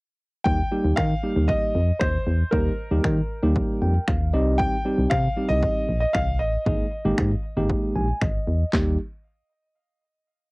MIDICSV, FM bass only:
0, 0, Header, 1, 2, 480
1, 0, Start_track
1, 0, Key_signature, -3, "major"
1, 0, Tempo, 517241
1, 424, Time_signature, 4, 2, 24, 8
1, 9754, End_track
2, 0, Start_track
2, 0, Title_t, "FM bass"
2, 0, Program_c, 0, 39
2, 424, Note_on_c, 0, 39, 101
2, 580, Note_off_c, 0, 39, 0
2, 784, Note_on_c, 0, 39, 89
2, 862, Note_off_c, 0, 39, 0
2, 905, Note_on_c, 0, 51, 107
2, 1061, Note_off_c, 0, 51, 0
2, 1265, Note_on_c, 0, 39, 97
2, 1420, Note_off_c, 0, 39, 0
2, 1624, Note_on_c, 0, 41, 95
2, 1780, Note_off_c, 0, 41, 0
2, 1866, Note_on_c, 0, 39, 101
2, 2022, Note_off_c, 0, 39, 0
2, 2104, Note_on_c, 0, 40, 96
2, 2260, Note_off_c, 0, 40, 0
2, 2344, Note_on_c, 0, 39, 114
2, 2500, Note_off_c, 0, 39, 0
2, 2704, Note_on_c, 0, 39, 99
2, 2782, Note_off_c, 0, 39, 0
2, 2825, Note_on_c, 0, 51, 107
2, 2981, Note_off_c, 0, 51, 0
2, 3184, Note_on_c, 0, 39, 96
2, 3340, Note_off_c, 0, 39, 0
2, 3544, Note_on_c, 0, 41, 86
2, 3700, Note_off_c, 0, 41, 0
2, 3786, Note_on_c, 0, 39, 92
2, 4024, Note_on_c, 0, 36, 104
2, 4038, Note_off_c, 0, 39, 0
2, 4336, Note_off_c, 0, 36, 0
2, 4623, Note_on_c, 0, 36, 89
2, 4702, Note_off_c, 0, 36, 0
2, 4745, Note_on_c, 0, 48, 111
2, 4901, Note_off_c, 0, 48, 0
2, 5104, Note_on_c, 0, 36, 100
2, 5260, Note_off_c, 0, 36, 0
2, 5465, Note_on_c, 0, 34, 95
2, 5620, Note_off_c, 0, 34, 0
2, 5706, Note_on_c, 0, 36, 89
2, 5944, Note_on_c, 0, 33, 91
2, 5958, Note_off_c, 0, 36, 0
2, 6100, Note_off_c, 0, 33, 0
2, 6184, Note_on_c, 0, 32, 104
2, 6340, Note_off_c, 0, 32, 0
2, 6544, Note_on_c, 0, 32, 94
2, 6622, Note_off_c, 0, 32, 0
2, 6665, Note_on_c, 0, 44, 113
2, 6821, Note_off_c, 0, 44, 0
2, 7025, Note_on_c, 0, 32, 87
2, 7180, Note_off_c, 0, 32, 0
2, 7384, Note_on_c, 0, 34, 91
2, 7540, Note_off_c, 0, 34, 0
2, 7626, Note_on_c, 0, 32, 100
2, 7782, Note_off_c, 0, 32, 0
2, 7864, Note_on_c, 0, 40, 83
2, 8020, Note_off_c, 0, 40, 0
2, 8104, Note_on_c, 0, 39, 102
2, 8328, Note_off_c, 0, 39, 0
2, 9754, End_track
0, 0, End_of_file